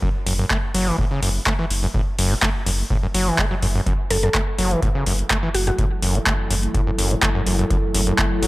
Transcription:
0.02 0.09 F#2 medium
0.02 kick loud
0.26 0.44 F#1 medium
0.26 0.33 F#2 medium
0.26 open hi-hat loud
0.39 0.45 F#2 loud
0.50 0.57 A3 medium
0.50 kick loud
0.50 clap loud
0.74 0.92 F#1 loud
0.74 0.89 F#3 loud
0.74 open hi-hat medium
0.87 0.97 E3 loud
0.98 1.05 A2 medium
0.98 kick loud
1.11 1.21 C#3 medium
1.22 1.40 F#1 medium
1.22 1.29 F#2 medium
1.22 open hi-hat medium
1.46 1.53 A3 loud
1.46 kick loud
1.46 clap loud
1.59 1.65 E3 loud
1.70 1.88 F#1 medium
1.70 open hi-hat medium
1.83 1.87 F#2 medium
1.94 2.01 A2 medium
1.94 kick loud
2.18 2.36 F#1 medium
2.18 2.33 F#2 medium
2.18 open hi-hat loud
2.31 2.35 B2 medium
2.42 2.49 A3 loud
2.42 kick loud
2.42 clap loud
2.66 2.84 F#1 medium
2.66 2.71 F#2 medium
2.66 open hi-hat medium
2.90 2.97 A2 medium
2.90 kick loud
3.03 3.07 F#2 loud
3.14 3.32 F#1 medium
3.14 3.29 F#3 medium
3.14 open hi-hat loud
3.27 3.40 E3 loud
3.38 3.45 A3 medium
3.38 kick loud
3.38 clap loud
3.51 3.55 F#3 medium
3.51 kick medium
3.62 3.80 F#1 medium
3.62 3.67 F#2 medium
3.62 open hi-hat medium
3.75 3.81 F#2 medium
3.86 3.93 F#2 medium
3.86 8.47 F#3 medium
3.86 8.47 E4 medium
3.86 8.47 A4 medium
3.86 kick loud
3.86 closed hi-hat medium
4.10 4.28 F#1 medium
4.10 4.17 F#2 medium
4.10 4.19 A4 medium
4.10 open hi-hat loud
4.23 4.29 F#2 loud
4.23 4.30 A4 medium
4.23 closed hi-hat soft
4.34 4.41 A3 loud
4.34 kick loud
4.34 clap loud
4.34 closed hi-hat medium
4.58 4.76 F#1 loud
4.58 4.73 F#3 medium
4.58 open hi-hat medium
4.71 4.81 E3 loud
4.71 closed hi-hat medium
4.82 4.89 A2 medium
4.82 kick loud
4.82 closed hi-hat medium
4.95 5.04 C#3 medium
5.06 5.24 F#1 medium
5.06 5.13 F#2 medium
5.06 open hi-hat loud
5.19 closed hi-hat soft
5.30 5.37 A3 medium
5.30 kick loud
5.30 clap loud
5.30 closed hi-hat medium
5.43 5.49 E3 loud
5.54 5.72 F#1 medium
5.54 5.63 F#4 medium
5.54 open hi-hat medium
5.67 5.71 F#2 medium
5.67 5.74 F#4 medium
5.67 closed hi-hat soft
5.78 5.85 A2 medium
5.78 kick loud
5.78 closed hi-hat medium
6.02 6.20 F#1 loud
6.02 6.17 F#2 medium
6.02 open hi-hat loud
6.15 6.19 B2 medium
6.15 closed hi-hat soft
6.26 6.33 A3 loud
6.26 kick loud
6.26 clap loud
6.26 closed hi-hat medium
6.50 6.68 F#1 loud
6.50 6.55 F#2 medium
6.50 open hi-hat medium
6.63 closed hi-hat medium
6.74 6.81 A2 medium
6.74 kick loud
6.74 closed hi-hat medium
6.87 6.91 F#2 loud
6.98 7.16 F#1 medium
6.98 7.13 F#2 medium
6.98 open hi-hat loud
7.11 7.15 B2 medium
7.11 closed hi-hat soft
7.22 7.29 A3 medium
7.22 kick loud
7.22 clap loud
7.22 closed hi-hat medium
7.35 7.41 F#2 loud
7.46 7.64 F#1 loud
7.46 7.57 F#2 medium
7.46 open hi-hat medium
7.59 7.65 F#2 loud
7.59 closed hi-hat medium
7.70 7.77 F#2 medium
7.70 kick loud
7.70 closed hi-hat medium
7.94 8.12 F#1 medium
7.94 8.01 F#2 medium
7.94 open hi-hat loud
8.07 8.13 F#2 loud
8.07 closed hi-hat soft
8.18 8.25 A3 loud
8.18 kick loud
8.18 clap loud
8.18 closed hi-hat medium
8.42 8.47 F#1 loud
8.42 8.47 F#3 loud
8.42 open hi-hat loud

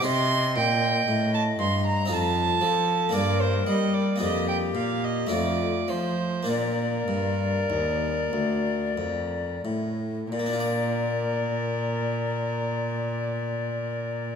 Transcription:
0.01 2.04 C4 soft
0.01 2.05 D#4 soft
0.01 2.06 G4 soft
0.05 0.52 C3 soft
0.05 0.58 C3 medium
0.05 2.10 D#5 medium
0.05 0.56 C6 loud
0.56 1.03 A#2 medium
0.56 1.08 A#2 medium
0.56 1.33 G5 medium
1.08 1.55 A2 soft
1.08 1.58 A2 medium
1.34 1.42 A5 medium
1.59 2.06 G2 soft
1.59 2.10 G2 medium
1.59 1.85 C6 medium
1.87 2.15 A#5 medium
2.06 3.08 C4 soft
2.06 3.09 D#4 soft
2.06 3.10 F4 soft
2.10 2.58 F2 medium
2.10 2.61 F2 medium
2.10 2.64 F4 medium
2.10 3.14 A5 medium
2.61 3.10 F3 soft
2.61 3.13 F3 medium
2.61 3.16 A4 medium
3.09 4.15 A#3 soft
3.09 4.16 D4 soft
3.09 4.17 A#4 soft
3.14 3.63 G2 soft
3.14 3.66 G2 medium
3.14 4.22 A#4 medium
3.14 3.42 D5 medium
3.41 3.67 C5 medium
3.67 4.16 G3 medium
3.67 4.23 G3 medium
3.67 3.95 D#5 medium
3.94 4.21 D5 medium
4.16 5.26 A#3 soft
4.16 5.27 D4 soft
4.16 5.27 F4 soft
4.21 4.71 F2 soft
4.21 4.76 F2 medium
4.21 5.33 G4 medium
4.21 4.48 D#5 medium
4.48 4.56 G5 medium
4.75 5.27 A#2 soft
4.75 5.31 A#2 soft
4.75 5.06 F5 medium
5.04 5.31 D#5 medium
5.27 6.41 A3 soft
5.27 6.42 D#4 soft
5.27 6.43 F4 soft
5.31 5.84 F2 soft
5.31 5.88 F2 soft
5.31 5.37 F#4 soft
5.31 5.91 D5 medium
5.36 6.15 F4 soft
5.88 6.43 F3 soft
5.88 6.47 F3 soft
5.88 6.50 C5 medium
6.43 10.26 A#3 soft
6.43 10.27 D4 soft
6.43 10.27 F4 soft
6.47 7.04 A#2 soft
6.47 7.07 A#2 soft
6.47 9.66 A#4 medium
6.47 9.61 D5 soft
7.08 7.66 G2 soft
7.08 7.69 G2 soft
7.70 8.29 D#2 soft
7.70 8.32 D#2 soft
8.33 8.94 D2 soft
8.33 8.97 D2 soft
8.98 9.61 F2 soft
8.98 9.64 F2 soft
9.65 10.28 A2 soft
9.65 10.31 A2 soft
10.32 14.36 A#2 medium
10.32 14.36 A#2 soft
10.32 14.36 A#4 medium
10.32 14.36 D5 medium
10.39 14.36 A#3 soft
10.46 14.36 D4 soft
10.53 14.36 F4 soft
10.60 14.36 D5 soft

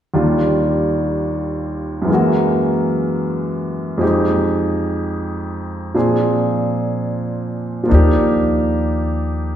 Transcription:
0.14 2.08 D#2 soft
0.14 2.09 D#3 soft
0.14 2.09 G3 soft
0.14 2.09 D4 soft
0.14 2.09 F4 soft
2.02 3.99 F#2 soft
2.02 4.00 E3 soft
2.07 3.98 G#3 soft
2.07 4.03 A#3 soft
2.13 4.04 F#4 soft
3.98 5.93 F2 soft
3.98 5.93 F3 soft
3.98 5.94 G#3 soft
3.98 5.95 D#4 soft
4.02 5.95 G4 soft
5.94 7.89 A#2 soft
5.94 7.82 F3 soft
5.94 7.89 C4 soft
5.94 7.87 D4 soft
5.94 7.90 G#4 soft
7.84 9.56 F3 soft
7.84 9.56 A#3 soft
7.89 9.56 D#2 medium
7.89 9.56 D4 soft
7.89 9.56 D#4 soft
7.94 9.56 G4 soft

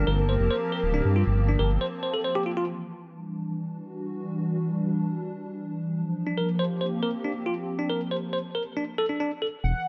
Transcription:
0.00 2.68 F3 medium
0.00 2.68 A#3 medium
0.00 2.68 C4 medium
0.00 0.34 D4 medium
0.00 2.68 G4 medium
0.00 2.24 A#4 loud
0.00 8.77 A5 medium
0.07 0.37 G1 medium
0.07 0.17 A#4 medium
0.29 0.33 C5 medium
0.40 0.49 F1 loud
0.51 0.55 C5 medium
0.72 0.79 A#4 medium
0.83 1.01 D1 loud
0.94 1.01 D4 medium
1.05 1.23 G2 loud
1.16 1.23 F4 medium
1.27 1.57 G1 loud
1.48 1.59 D4 medium
1.59 1.78 G1 loud
1.59 1.70 A#4 medium
1.81 1.85 C5 medium
2.03 2.13 C5 medium
2.14 2.20 A4 medium
2.24 2.35 C5 medium
2.35 2.42 G4 loud
2.46 2.50 F4 medium
2.57 2.64 F4 loud
2.68 5.94 E3 medium
3.04 5.94 G3 medium
3.04 6.71 D4 medium
3.64 5.94 F#4 medium
5.94 8.77 F3 medium
6.27 6.37 D4 medium
6.34 8.77 A#3 medium
6.34 8.77 G4 medium
6.34 6.48 A#4 medium
6.59 6.63 C5 medium
6.79 8.77 C4 medium
6.79 6.85 C5 medium
7.03 7.10 A#4 medium
7.24 7.31 D4 medium
7.46 7.53 F4 medium
7.79 7.89 D4 medium
7.90 8.00 A#4 medium
8.11 8.15 C5 medium
8.33 8.37 C5 medium
8.55 8.62 A#4 medium
8.77 8.83 D4 medium
8.98 9.05 A4 loud
9.09 9.19 D4 medium
9.20 9.30 D4 medium
9.42 9.46 A4 medium
9.64 9.73 E1 loud
9.64 9.88 E3 medium
9.64 9.88 F#5 loud

